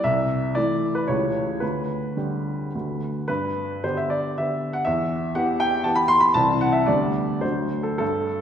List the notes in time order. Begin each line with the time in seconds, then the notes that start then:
0.04 C2 E5
0.55 E3 A3 E4 D5
0.95 B4
1.07 C#2 E3 A3 G4 C#5
1.60 D2 B4
2.16 D3 G3 G4
2.75 D2 D3 A3 F#4
3.28 G2 B4
3.84 D3 B3 G4 C5
3.97 E5
4.10 D5
4.38 D3 B3 G4 E5
4.73 F#5
4.85 E2 E5
5.35 E3 B3 G4 F#5
5.60 G5
5.84 E3 B3 G4 A5
5.95 B5
6.08 C6
6.20 B5
6.34 C2 E3 C4 E4 A5
6.61 F#5
6.72 E5
6.87 D2 G3 B3 D4 D5
7.41 D2 F#3 A3 D4 C5
7.83 A4
7.98 G2 A4